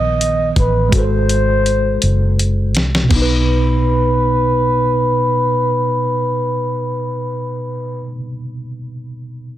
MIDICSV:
0, 0, Header, 1, 5, 480
1, 0, Start_track
1, 0, Key_signature, 5, "major"
1, 0, Tempo, 727273
1, 607, Time_signature, 6, 3, 24, 8
1, 6320, End_track
2, 0, Start_track
2, 0, Title_t, "Flugelhorn"
2, 0, Program_c, 0, 56
2, 0, Note_on_c, 0, 75, 97
2, 353, Note_off_c, 0, 75, 0
2, 389, Note_on_c, 0, 71, 69
2, 602, Note_off_c, 0, 71, 0
2, 632, Note_on_c, 0, 72, 82
2, 1553, Note_off_c, 0, 72, 0
2, 2065, Note_on_c, 0, 71, 71
2, 5337, Note_off_c, 0, 71, 0
2, 6320, End_track
3, 0, Start_track
3, 0, Title_t, "Tine electric piano"
3, 0, Program_c, 1, 4
3, 0, Control_c, 1, 64, 127
3, 0, Note_on_c, 1, 51, 58
3, 0, Note_on_c, 1, 59, 52
3, 0, Note_on_c, 1, 71, 53
3, 0, Note_on_c, 1, 75, 63
3, 569, Note_off_c, 1, 51, 0
3, 579, Note_off_c, 1, 59, 0
3, 588, Note_on_c, 1, 56, 54
3, 589, Note_off_c, 1, 71, 0
3, 607, Note_on_c, 1, 66, 51
3, 615, Control_c, 1, 64, 0
3, 621, Note_off_c, 1, 75, 0
3, 626, Note_on_c, 1, 69, 51
3, 648, Note_on_c, 1, 71, 52
3, 671, Note_off_c, 1, 71, 0
3, 690, Note_on_c, 1, 72, 55
3, 740, Control_c, 1, 64, 127
3, 2001, Note_on_c, 1, 47, 66
3, 2011, Note_off_c, 1, 56, 0
3, 2021, Note_off_c, 1, 66, 0
3, 2030, Note_off_c, 1, 69, 0
3, 2041, Note_on_c, 1, 59, 57
3, 2055, Control_c, 1, 64, 0
3, 2062, Note_off_c, 1, 72, 0
3, 2083, Note_on_c, 1, 63, 55
3, 2123, Note_on_c, 1, 71, 62
3, 2161, Control_c, 1, 64, 127
3, 5273, Note_off_c, 1, 47, 0
3, 5313, Note_off_c, 1, 59, 0
3, 5355, Note_off_c, 1, 63, 0
3, 5395, Note_off_c, 1, 71, 0
3, 6320, End_track
4, 0, Start_track
4, 0, Title_t, "Fingered electric bass"
4, 0, Program_c, 2, 33
4, 0, Note_on_c, 2, 34, 70
4, 347, Note_off_c, 2, 34, 0
4, 376, Note_on_c, 2, 33, 79
4, 588, Note_off_c, 2, 33, 0
4, 615, Note_on_c, 2, 32, 93
4, 1305, Note_off_c, 2, 32, 0
4, 1341, Note_on_c, 2, 30, 69
4, 1819, Note_off_c, 2, 30, 0
4, 1819, Note_on_c, 2, 36, 72
4, 2030, Note_off_c, 2, 36, 0
4, 2056, Note_on_c, 2, 35, 73
4, 5328, Note_off_c, 2, 35, 0
4, 6320, End_track
5, 0, Start_track
5, 0, Title_t, "Drums"
5, 139, Note_on_c, 9, 42, 50
5, 205, Note_off_c, 9, 42, 0
5, 371, Note_on_c, 9, 36, 84
5, 372, Note_on_c, 9, 42, 41
5, 437, Note_off_c, 9, 36, 0
5, 438, Note_off_c, 9, 42, 0
5, 610, Note_on_c, 9, 36, 80
5, 611, Note_on_c, 9, 42, 63
5, 676, Note_off_c, 9, 36, 0
5, 677, Note_off_c, 9, 42, 0
5, 854, Note_on_c, 9, 42, 46
5, 920, Note_off_c, 9, 42, 0
5, 1095, Note_on_c, 9, 42, 32
5, 1161, Note_off_c, 9, 42, 0
5, 1332, Note_on_c, 9, 42, 59
5, 1398, Note_off_c, 9, 42, 0
5, 1580, Note_on_c, 9, 42, 41
5, 1646, Note_off_c, 9, 42, 0
5, 1812, Note_on_c, 9, 42, 37
5, 1825, Note_on_c, 9, 38, 79
5, 1878, Note_off_c, 9, 42, 0
5, 1891, Note_off_c, 9, 38, 0
5, 1946, Note_on_c, 9, 38, 63
5, 2012, Note_off_c, 9, 38, 0
5, 2049, Note_on_c, 9, 49, 63
5, 2051, Note_on_c, 9, 36, 76
5, 2115, Note_off_c, 9, 49, 0
5, 2117, Note_off_c, 9, 36, 0
5, 6320, End_track
0, 0, End_of_file